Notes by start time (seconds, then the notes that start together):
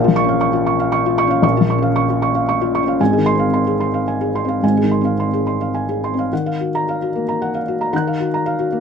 Already playing: A#1 A#2 F5
0.04 F4
0.08 F3
0.16 C#6
0.24 C#4
0.29 F5
0.41 C#6
0.53 F4
0.66 C#6
0.80 F5
0.92 C#6
1.06 F4
1.18 C#6
1.27 C#4 F5
1.42 A#1 A#2 C#6
1.57 F3 F4
1.70 C#6
1.78 C#4
1.82 F5
1.96 C#6
2.10 F4
2.22 C#6
2.35 F5
2.49 C#6
2.61 F4
2.75 C#6
2.83 C#4
2.88 F5
3.00 G#1 G#2 G#5
3.13 D#3 G#4
3.26 C6
3.35 C4
3.39 F5
3.54 C6
3.67 G#4
3.80 C6
3.94 F5
4.08 G#5
4.21 G#4
4.35 C6
4.45 C4 F5
4.62 G#1 G#2 G#5
4.77 G#4
4.83 D#3
4.91 C6
5.01 C4 F5
5.20 C6
5.33 G#4
5.47 C6
5.61 F5
5.74 G#5
5.89 G#4
6.04 C6
6.14 C4
6.19 F5
6.33 D#3 F#5
6.46 F5
6.60 F#4
6.75 A#5
6.89 F5
7.02 F#4
7.15 A#3
7.29 A#5
7.42 F#5
7.54 F5
7.68 F#4
7.81 A#5
7.93 D#3 F#5 A#5 F#6
8.07 F5
8.20 F#4
8.34 A#5
8.46 F5
8.59 F#4
8.72 A#3